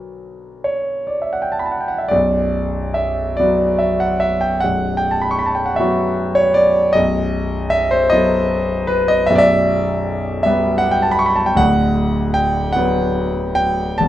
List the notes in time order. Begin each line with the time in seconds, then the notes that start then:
Already playing: B1 D3 F#3 F#4 B4
0.64 C#5
1.07 D5
1.22 E5
1.33 F#5
1.42 G5
1.52 A5
1.59 B5
1.66 A5
1.72 F#5
1.81 G5
1.88 F#5
1.98 E5
2.08 B0 B1 D5
2.94 E5
3.37 F#3 B3 F#4 D5
3.79 E5
4.00 F#5
4.20 E5
4.41 G5
4.60 B0 B1 F#5
4.97 G5
5.11 A5
5.22 B5
5.31 C#6
5.39 B5
5.46 A5
5.55 G5
5.66 F#5
5.76 F#3 B3 E5
5.80 F#4
6.35 C#5
6.54 D5
6.93 B0 B1 D#5
7.70 E5
7.91 C5
8.10 F#3 B3 A4 D#5
8.87 B4
9.08 D#5
9.27 B0 B1 E5
9.35 D5 E5
10.43 G3 B3 B4 E5
10.78 F#5
10.91 G5
11.02 A5
11.11 B5
11.19 C#6
11.26 B5
11.36 A5
11.46 G5
11.55 D1 D2 F#5
12.34 G5
12.73 F#3 B3 F#5
12.77 B4
13.55 G5
13.98 E1 E2 A5